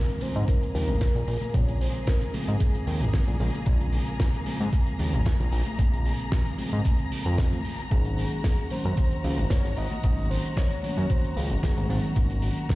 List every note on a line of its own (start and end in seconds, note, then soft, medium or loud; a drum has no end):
0.00 0.18 C#3 medium
0.00 0.18 F3 medium
0.00 0.19 G#3 medium
0.00 7.87 A#3 medium
0.00 0.19 C4 medium
0.00 7.87 G#4 medium
0.00 0.23 A#4 loud
0.00 12.75 A#5 medium
0.00 impact medium
0.09 closed hi-hat medium
0.09 shaker soft
0.21 0.71 C#3 medium
0.21 0.71 F3 medium
0.21 0.72 G#3 medium
0.21 0.72 C4 medium
0.21 0.50 C5 loud
0.21 open hi-hat loud
0.21 high conga medium
0.21 shaker loud
0.21 shaker medium
0.35 0.44 G#2 medium
0.35 closed hi-hat medium
0.35 shaker soft
0.47 0.74 A#4 loud
0.47 kick loud
0.47 closed hi-hat loud
0.47 shaker medium
0.62 closed hi-hat medium
0.62 shaker soft
0.74 0.90 D#2 medium
0.74 0.93 C#3 medium
0.74 0.93 F3 medium
0.74 0.93 G#3 medium
0.74 0.93 C4 loud
0.74 1.56 A#4 loud
0.74 open hi-hat loud
0.74 shaker medium
0.76 shaker medium
0.88 0.97 G#1 loud
0.88 closed hi-hat medium
0.88 high conga medium
0.88 shaker soft
0.90 shaker soft
1.01 kick loud
1.01 snare loud
1.01 closed hi-hat loud
1.01 shaker medium
1.14 1.24 A#1 medium
1.14 closed hi-hat medium
1.14 low conga medium
1.14 shaker soft
1.27 1.37 A#1 medium
1.27 open hi-hat medium
1.27 shaker medium
1.41 closed hi-hat medium
1.41 high conga medium
1.41 low conga medium
1.41 shaker soft
1.41 shaker medium
1.53 1.88 A#1 loud
1.53 2.30 C#3 medium
1.53 2.31 F3 medium
1.53 2.31 G#3 medium
1.53 2.31 C4 medium
1.53 1.80 C#5 loud
1.53 kick loud
1.53 closed hi-hat medium
1.53 shaker medium
1.68 closed hi-hat medium
1.68 shaker soft
1.69 shaker soft
1.80 2.06 C5 loud
1.80 open hi-hat loud
1.80 shaker medium
1.95 closed hi-hat medium
1.95 shaker soft
1.95 shaker medium
2.07 2.36 A#4 medium
2.07 kick loud
2.07 snare loud
2.07 closed hi-hat loud
2.07 shaker medium
2.21 closed hi-hat medium
2.21 shaker soft
2.33 3.37 C#3 medium
2.33 3.37 F3 medium
2.33 3.38 G#3 medium
2.33 3.38 C4 loud
2.33 3.40 G#4 medium
2.33 open hi-hat loud
2.33 high conga medium
2.33 shaker medium
2.47 2.57 G#2 medium
2.47 closed hi-hat medium
2.47 shaker soft
2.60 kick loud
2.60 closed hi-hat loud
2.60 shaker medium
2.62 shaker medium
2.74 closed hi-hat medium
2.74 shaker soft
2.86 3.02 D#2 medium
2.86 open hi-hat loud
2.86 shaker medium
3.01 3.10 G#1 loud
3.01 closed hi-hat medium
3.01 shaker soft
3.13 kick loud
3.13 snare loud
3.13 closed hi-hat loud
3.13 shaker medium
3.27 3.36 A#1 medium
3.27 closed hi-hat medium
3.27 high conga medium
3.27 low conga medium
3.27 shaker soft
3.40 3.50 A#1 loud
3.40 3.63 C#3 loud
3.40 3.64 F3 medium
3.40 3.64 G#3 medium
3.40 3.64 A#3 loud
3.40 open hi-hat medium
3.40 shaker medium
3.53 closed hi-hat medium
3.53 low conga medium
3.53 shaker soft
3.66 4.00 A#1 loud
3.66 4.43 C#3 medium
3.66 4.43 F3 medium
3.66 4.43 G#3 medium
3.66 4.44 C4 medium
3.66 kick loud
3.66 closed hi-hat loud
3.66 shaker medium
3.68 shaker medium
3.81 closed hi-hat medium
3.81 shaker soft
3.93 open hi-hat loud
3.93 shaker medium
4.07 closed hi-hat medium
4.07 shaker soft
4.20 kick loud
4.20 snare loud
4.20 closed hi-hat medium
4.20 shaker medium
4.34 closed hi-hat medium
4.34 shaker soft
4.46 4.96 C#3 medium
4.46 4.96 F3 medium
4.46 4.96 G#3 medium
4.46 4.97 C4 medium
4.46 open hi-hat loud
4.46 high conga medium
4.46 shaker medium
4.60 4.69 G#2 loud
4.60 closed hi-hat medium
4.60 shaker soft
4.73 kick loud
4.73 closed hi-hat medium
4.73 shaker medium
4.86 closed hi-hat medium
4.86 shaker soft
4.88 shaker soft
4.99 5.15 D#2 medium
4.99 5.18 C#3 medium
4.99 5.18 F3 medium
4.99 5.18 G#3 medium
4.99 5.18 C4 loud
4.99 open hi-hat loud
4.99 shaker medium
5.13 5.22 G#1 loud
5.13 closed hi-hat medium
5.13 high conga loud
5.13 shaker soft
5.26 kick loud
5.26 snare loud
5.26 closed hi-hat loud
5.26 shaker soft
5.26 shaker medium
5.40 5.49 A#1 medium
5.40 closed hi-hat medium
5.40 low conga medium
5.40 shaker soft
5.52 5.62 A#1 medium
5.52 open hi-hat loud
5.52 shaker medium
5.66 closed hi-hat medium
5.66 high conga medium
5.66 low conga medium
5.66 shaker soft
5.66 shaker medium
5.78 6.13 A#1 loud
5.78 6.55 C#3 medium
5.78 6.55 F3 medium
5.78 6.56 G#3 medium
5.78 6.56 C4 medium
5.78 kick loud
5.78 closed hi-hat loud
5.78 shaker medium
5.93 closed hi-hat medium
5.93 shaker soft
6.05 open hi-hat loud
6.05 shaker medium
6.19 closed hi-hat medium
6.19 shaker soft
6.32 kick loud
6.32 snare loud
6.32 closed hi-hat medium
6.32 shaker soft
6.32 shaker medium
6.46 closed hi-hat medium
6.46 shaker soft
6.57 7.62 C#3 medium
6.57 7.62 F3 medium
6.57 7.62 G#3 medium
6.57 7.63 C4 loud
6.57 open hi-hat loud
6.57 high conga medium
6.57 shaker medium
6.73 6.81 G#2 medium
6.73 closed hi-hat medium
6.73 shaker medium
6.73 shaker soft
6.85 kick loud
6.85 closed hi-hat loud
6.85 shaker soft
6.85 shaker medium
6.99 closed hi-hat medium
6.99 shaker soft
7.11 open hi-hat loud
7.11 shaker medium
7.13 shaker medium
7.26 7.59 F2 medium
7.26 closed hi-hat medium
7.26 shaker soft
7.38 kick loud
7.38 snare loud
7.38 closed hi-hat loud
7.38 shaker medium
7.52 closed hi-hat medium
7.52 high conga medium
7.52 low conga medium
7.52 shaker soft
7.65 open hi-hat loud
7.65 shaker medium
7.78 closed hi-hat medium
7.78 low conga medium
7.78 shaker soft
7.90 8.25 G#1 loud
7.90 8.68 D#3 medium
7.90 8.68 F#3 medium
7.90 12.75 G#3 medium
7.90 8.68 A#3 medium
7.90 8.68 C#4 medium
7.90 12.75 F#4 medium
7.90 8.67 G#4 loud
7.90 kick loud
7.90 closed hi-hat medium
7.90 shaker soft
7.90 shaker medium
8.05 closed hi-hat medium
8.05 shaker soft
8.18 open hi-hat loud
8.18 shaker medium
8.31 closed hi-hat medium
8.31 shaker soft
8.31 shaker medium
8.44 kick loud
8.44 snare loud
8.44 closed hi-hat loud
8.44 shaker soft
8.44 shaker medium
8.57 closed hi-hat medium
8.57 shaker soft
8.70 9.21 D#3 medium
8.70 9.21 F#3 medium
8.70 9.21 A#3 medium
8.70 9.21 C#4 medium
8.70 9.47 C5 loud
8.70 open hi-hat loud
8.70 high conga medium
8.70 shaker medium
8.84 8.94 F#2 medium
8.84 closed hi-hat medium
8.84 shaker soft
8.84 shaker medium
8.97 kick loud
8.97 closed hi-hat loud
8.97 shaker soft
8.97 shaker medium
9.11 closed hi-hat medium
9.11 shaker soft
9.23 9.40 C#2 medium
9.23 9.42 D#3 medium
9.23 9.43 F#3 medium
9.23 9.43 A#3 medium
9.23 9.43 C#4 loud
9.23 open hi-hat loud
9.23 shaker medium
9.38 9.47 F#1 loud
9.38 closed hi-hat medium
9.38 high conga medium
9.38 shaker soft
9.50 9.79 C#5 loud
9.50 kick loud
9.50 snare loud
9.50 closed hi-hat loud
9.50 shaker medium
9.64 9.73 G#1 medium
9.64 closed hi-hat medium
9.64 low conga medium
9.64 shaker soft
9.77 9.87 G#1 medium
9.77 10.03 D#5 loud
9.77 open hi-hat medium
9.77 shaker loud
9.77 shaker medium
9.90 closed hi-hat medium
9.90 high conga medium
9.90 low conga medium
9.90 shaker soft
9.92 shaker soft
10.02 10.38 G#1 loud
10.02 10.80 D#3 medium
10.02 10.80 F#3 medium
10.02 10.80 A#3 medium
10.02 10.81 C#4 medium
10.02 10.29 D#5 loud
10.02 kick loud
10.02 closed hi-hat loud
10.02 shaker medium
10.18 closed hi-hat soft
10.18 shaker soft
10.30 10.55 C5 loud
10.30 open hi-hat loud
10.30 shaker medium
10.45 closed hi-hat medium
10.45 shaker soft
10.45 shaker medium
10.56 10.82 C#5 loud
10.56 kick loud
10.56 snare loud
10.56 closed hi-hat loud
10.56 shaker medium
10.70 closed hi-hat medium
10.70 shaker soft
10.72 shaker soft
10.82 11.87 D#3 medium
10.82 11.87 F#3 medium
10.82 11.87 A#3 medium
10.82 11.88 C#4 medium
10.82 11.12 C#5 loud
10.82 open hi-hat medium
10.82 high conga medium
10.82 shaker medium
10.85 shaker medium
10.97 11.06 F#2 medium
10.97 closed hi-hat medium
10.97 shaker soft
11.10 11.38 C5 loud
11.10 kick loud
11.10 closed hi-hat loud
11.10 shaker medium
11.24 closed hi-hat medium
11.24 shaker soft
11.36 11.52 C#2 medium
11.36 11.63 G#4 medium
11.36 open hi-hat loud
11.36 shaker medium
11.38 shaker medium
11.50 11.59 F#1 loud
11.50 closed hi-hat medium
11.50 shaker medium
11.63 12.01 G#4 medium
11.63 kick loud
11.63 snare loud
11.63 closed hi-hat loud
11.63 shaker medium
11.77 11.86 G#1 medium
11.77 closed hi-hat medium
11.77 high conga medium
11.77 low conga medium
11.77 shaker soft
11.89 11.99 G#1 medium
11.89 12.13 D#3 medium
11.89 12.13 F#3 medium
11.89 12.13 A#3 medium
11.89 12.13 C4 loud
11.89 open hi-hat medium
11.89 shaker medium
11.89 shaker loud
12.04 closed hi-hat medium
12.04 low conga medium
12.04 shaker soft
12.04 shaker medium
12.15 12.50 G#1 loud
12.15 12.75 D#3 medium
12.15 12.75 F#3 medium
12.15 12.75 A#3 medium
12.15 12.75 C#4 medium
12.15 kick loud
12.15 closed hi-hat loud
12.15 shaker medium
12.30 closed hi-hat medium
12.30 shaker soft
12.42 open hi-hat loud
12.42 shaker medium
12.56 closed hi-hat medium
12.56 shaker soft
12.56 shaker medium
12.69 kick loud
12.69 snare loud
12.69 closed hi-hat loud
12.69 shaker medium